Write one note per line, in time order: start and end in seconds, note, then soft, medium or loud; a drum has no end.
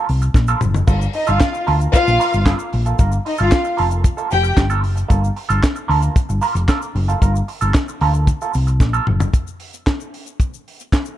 0.08 0.27 C2 medium
0.08 muted clean electric guitar stroke soft
0.08 open hi-hat medium
0.22 muted clean electric guitar stroke soft
0.22 closed hi-hat soft
0.22 shaker medium
0.34 0.53 A#1 medium
0.34 muted clean electric guitar stroke soft
0.34 kick loud
0.34 snare medium
0.34 shaker medium
0.48 0.60 A#3 medium
0.48 0.60 F4 medium
0.48 0.60 A4 medium
0.48 shaker medium
0.61 0.81 F#1 medium
0.61 mid tom medium
0.61 shaker medium
0.74 muted clean electric guitar stroke soft
0.74 floor tom medium
0.74 shaker medium
0.87 1.06 G1 loud
0.87 1.05 A#3 medium
0.87 1.00 F4 medium
0.87 0.99 A4 medium
0.87 kick loud
0.87 crash medium
0.87 shaker medium
1.00 muted clean electric guitar stroke soft
1.00 shaker medium
1.13 1.26 D#4 medium
1.13 1.25 D#5 medium
1.13 muted clean electric guitar stroke soft
1.13 open hi-hat medium
1.27 1.37 G1 medium
1.27 1.38 A#3 medium
1.27 1.39 F4 medium
1.27 1.65 F4 medium
1.27 1.39 A4 medium
1.27 1.65 F5 medium
1.27 closed hi-hat soft
1.27 shaker medium
1.40 kick loud
1.40 snare loud
1.40 clap medium
1.40 closed hi-hat medium
1.40 shaker medium
1.53 muted clean electric guitar stroke soft
1.53 shaker medium
1.67 1.86 D2 medium
1.67 1.81 A#3 medium
1.67 1.80 F4 loud
1.67 1.80 A4 medium
1.67 open hi-hat medium
1.80 1.92 A#3 soft
1.80 1.93 F4 medium
1.80 1.94 A#4 medium
1.80 closed hi-hat soft
1.80 shaker medium
1.93 2.44 F4 loud
1.93 2.43 F5 loud
1.93 kick loud
1.93 closed hi-hat medium
1.93 shaker medium
2.08 2.16 A#1 medium
2.08 muted clean electric guitar stroke soft
2.08 shaker soft
2.20 2.37 A#3 medium
2.20 2.32 F4 medium
2.20 2.32 A#4 medium
2.20 open hi-hat medium
2.20 shaker medium
2.33 2.52 G1 medium
2.33 muted clean electric guitar stroke soft
2.33 closed hi-hat soft
2.33 shaker soft
2.45 2.65 A#3 medium
2.45 2.59 F4 medium
2.45 2.58 A4 medium
2.45 kick loud
2.45 snare medium
2.45 clap medium
2.45 closed hi-hat medium
2.45 shaker medium
2.59 muted clean electric guitar stroke soft
2.59 shaker medium
2.72 2.92 A#1 loud
2.72 muted clean electric guitar stroke soft
2.72 open hi-hat medium
2.86 2.98 A#3 medium
2.86 2.99 F4 medium
2.86 3.00 A4 medium
2.86 closed hi-hat soft
2.86 shaker soft
2.99 3.17 G1 medium
2.99 3.17 A#3 medium
2.99 3.12 F4 medium
2.99 3.11 A#4 medium
2.99 kick loud
2.99 closed hi-hat medium
2.99 shaker medium
3.12 muted clean electric guitar stroke soft
3.12 shaker medium
3.25 3.37 D#4 medium
3.25 3.37 D#5 medium
3.25 muted clean electric guitar stroke soft
3.25 open hi-hat medium
3.38 3.49 G1 medium
3.38 3.50 A#3 medium
3.38 3.50 F4 medium
3.38 3.77 F4 medium
3.38 3.51 A4 medium
3.38 3.77 F5 medium
3.38 closed hi-hat soft
3.38 shaker medium
3.52 kick loud
3.52 snare loud
3.52 clap medium
3.52 closed hi-hat medium
3.52 shaker medium
3.64 muted clean electric guitar stroke soft
3.64 shaker medium
3.77 4.06 F1 medium
3.77 3.91 A#3 medium
3.77 3.90 F4 medium
3.77 3.89 A4 medium
3.77 open hi-hat medium
3.90 4.03 A#3 medium
3.90 4.04 F4 medium
3.90 4.04 A4 medium
3.90 closed hi-hat soft
3.90 shaker medium
4.04 muted clean electric guitar stroke soft
4.04 kick loud
4.04 closed hi-hat medium
4.04 shaker medium
4.17 4.29 A#3 medium
4.17 4.29 F4 medium
4.17 4.30 A4 medium
4.17 shaker medium
4.31 4.50 F1 medium
4.31 4.52 G4 medium
4.31 4.53 G5 loud
4.31 open hi-hat medium
4.31 shaker medium
4.43 muted clean electric guitar stroke soft
4.43 closed hi-hat soft
4.43 shaker medium
4.57 4.84 G1 medium
4.57 muted clean electric guitar stroke soft
4.57 kick loud
4.57 snare medium
4.57 clap medium
4.57 closed hi-hat medium
4.57 shaker medium
4.70 4.81 A#3 medium
4.70 4.82 F4 medium
4.70 4.82 A4 medium
4.70 shaker medium
4.82 5.02 F#1 medium
4.82 muted clean electric guitar stroke soft
4.82 open hi-hat medium
4.96 muted clean electric guitar stroke soft
4.96 closed hi-hat soft
4.96 shaker medium
5.09 5.29 G1 medium
5.09 5.27 A#3 medium
5.09 5.22 F4 medium
5.09 5.21 A4 medium
5.09 kick loud
5.09 closed hi-hat medium
5.09 shaker medium
5.22 muted clean electric guitar stroke soft
5.22 shaker medium
5.36 muted clean electric guitar stroke soft
5.36 open hi-hat medium
5.49 5.59 G1 medium
5.49 5.62 A#3 soft
5.49 5.62 F4 medium
5.49 5.62 A4 medium
5.49 closed hi-hat medium
5.49 shaker medium
5.63 kick loud
5.63 snare loud
5.63 clap loud
5.63 closed hi-hat medium
5.63 shaker medium
5.76 muted clean electric guitar stroke soft
5.76 shaker medium
5.88 6.08 D2 medium
5.88 6.02 A#3 medium
5.88 6.01 F4 medium
5.88 6.01 A4 medium
5.88 open hi-hat medium
6.02 6.15 A#3 medium
6.02 6.15 F4 medium
6.02 6.16 A#4 medium
6.02 closed hi-hat soft
6.02 shaker medium
6.16 muted clean electric guitar stroke soft
6.16 kick loud
6.16 closed hi-hat medium
6.16 shaker medium
6.29 6.39 G1 medium
6.29 muted clean electric guitar stroke soft
6.29 shaker medium
6.42 6.60 A#3 medium
6.42 6.55 F4 loud
6.42 6.55 A#4 medium
6.42 open hi-hat medium
6.42 shaker medium
6.55 6.64 F1 medium
6.55 muted clean electric guitar stroke soft
6.55 closed hi-hat soft
6.55 shaker medium
6.68 6.86 A#3 medium
6.68 6.81 F4 medium
6.68 6.80 A4 medium
6.68 kick loud
6.68 snare medium
6.68 clap medium
6.68 closed hi-hat medium
6.68 shaker medium
6.81 muted clean electric guitar stroke soft
6.81 shaker medium
6.95 7.13 F#1 loud
6.95 muted clean electric guitar stroke soft
6.95 open hi-hat medium
7.08 7.20 A#3 medium
7.08 7.21 F4 medium
7.08 7.22 A4 medium
7.08 closed hi-hat soft
7.08 shaker medium
7.22 7.40 G1 loud
7.22 7.39 A#3 medium
7.22 7.35 F4 medium
7.22 7.35 A#4 medium
7.22 kick loud
7.22 closed hi-hat medium
7.22 shaker medium
7.35 muted clean electric guitar stroke soft
7.35 shaker medium
7.48 muted clean electric guitar stroke soft
7.48 open hi-hat medium
7.61 7.71 G1 medium
7.61 7.73 A#3 medium
7.61 7.74 F4 medium
7.61 7.74 A4 medium
7.61 closed hi-hat soft
7.61 shaker medium
7.74 muted clean electric guitar stroke soft
7.74 kick loud
7.74 snare loud
7.74 clap medium
7.74 closed hi-hat medium
7.74 shaker medium
7.88 muted clean electric guitar stroke soft
7.88 shaker medium
8.01 8.29 D2 medium
8.01 8.15 A#3 medium
8.01 8.14 F4 medium
8.01 8.13 A4 medium
8.01 open hi-hat medium
8.13 8.27 A#3 soft
8.13 8.28 F4 soft
8.13 8.28 A4 medium
8.13 closed hi-hat soft
8.13 shaker medium
8.27 muted clean electric guitar stroke soft
8.27 kick loud
8.27 closed hi-hat medium
8.27 shaker medium
8.41 8.53 A#3 medium
8.41 8.53 F4 medium
8.41 8.53 A4 medium
8.41 shaker medium
8.54 8.80 C2 medium
8.54 muted clean electric guitar stroke medium
8.54 open hi-hat medium
8.54 shaker medium
8.67 muted clean electric guitar stroke soft
8.67 closed hi-hat soft
8.67 shaker soft
8.80 8.98 A#1 medium
8.80 muted clean electric guitar stroke soft
8.80 kick loud
8.80 snare medium
8.80 shaker medium
8.93 9.06 A#3 medium
8.93 9.06 F4 medium
8.93 9.07 A4 medium
8.93 shaker medium
9.07 9.26 F#1 medium
9.07 muted clean electric guitar stroke soft
9.07 mid tom medium
9.20 muted clean electric guitar stroke medium
9.20 floor tom medium
9.20 shaker medium
9.34 kick medium
9.34 closed hi-hat medium
9.34 shaker medium
9.47 shaker medium
9.60 open hi-hat medium
9.74 closed hi-hat soft
9.74 shaker medium
9.87 kick loud
9.87 snare loud
9.87 clap medium
9.87 closed hi-hat medium
9.87 shaker medium
10.00 shaker medium
10.14 open hi-hat medium
10.26 closed hi-hat soft
10.26 shaker medium
10.40 kick medium
10.40 closed hi-hat medium
10.40 shaker medium
10.54 shaker soft
10.68 open hi-hat medium
10.80 closed hi-hat soft
10.80 shaker soft
10.92 kick loud
10.92 snare medium
10.92 clap medium
10.92 closed hi-hat medium
10.92 shaker medium
11.05 shaker medium